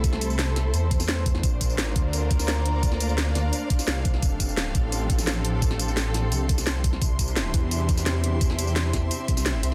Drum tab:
HH |x-x-x-x-x-x-x-x-|x-x-x-x-x-x-x-x-|x-x-x-x-x-x-x-x-|x-x-x-x-x-x-x-x-|
TB |x-xxx-x-x-xxx-x-|x-xxx-x-x-xxx---|x-xxx-x-x-xxx-x-|x-xxx-x-x-xxx---|
SD |-o--o-o----oo--o|----o------oo---|-o--o-o----oo--o|----o------oo---|
BD |o---------o---o-|o-o---o---o-----|o---------o---o-|o-o---o---o-----|

HH |x-x-x-x-x-x-x-x-|x-x-x-x-x-x-x-x-|x-x-x-x-x-x-x-x-|
TB |x-xxx-x-x-xxx-x-|x-xxx-x-x-xxx---|x-xxx-x-x-xxx-x-|
SD |-o--o-o----oo--o|----o------oo---|-o--o-o----oo---|
BD |o---------o---o-|o-o---o---o-----|o-----o---o-----|